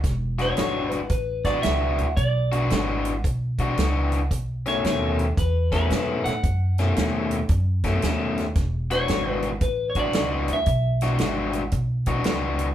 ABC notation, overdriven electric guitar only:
X:1
M:4/4
L:1/8
Q:"Swing" 1/4=113
K:Emix
V:1 name="Overdriven electric guitar" clef=bass
z [E,G,DF] [E,G,DF] z2 [E,G,DF] [E,G,DF] z | z [E,G,DF] [E,G,DF] z2 [E,G,DF] [E,G,DF] z | z [B,,^D,A,C] [B,,D,A,C] z2 [B,,D,A,C] [B,,D,A,C] z | z [B,,^D,A,C] [B,,D,A,C] z2 [B,,D,A,C] [B,,D,A,C] z |
z [E,G,DF] [E,G,DF] z2 [E,G,DF] [E,G,DF] z | z [E,G,DF] [E,G,DF] z2 [E,G,DF] [E,G,DF] z |]